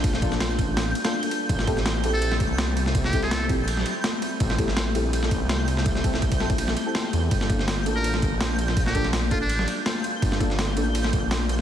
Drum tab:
RD |x-x-x-x-x-xx-xx-|x-x-x-x-x-x-x-x-|x-x-x-x-x-x-x-x-|x-x-x-x-x-x-x-x-|
SD |-o-oo---o--o----|-o-oo----o--o--o|-o-oo----o--o---|-o-oo----o--o--o|
BD |o-o---o---------|o-o-------o-----|o-o---o---------|o-o-------o-----|

RD |x-x-xx-xx-x-x-x-|x-x-x-x-x-x-x-x-|x-x-x-x-x-x-x-x-|x-x-x-x-x-x-x-x-|
SD |-o-o--o--o--o---|-o-oo----o--o--o|-o-oo----o--o---|-o-oo----o--o---|
BD |o-o-oo-o--------|o-o-------o-----|o-o---o---------|o-o-------o-----|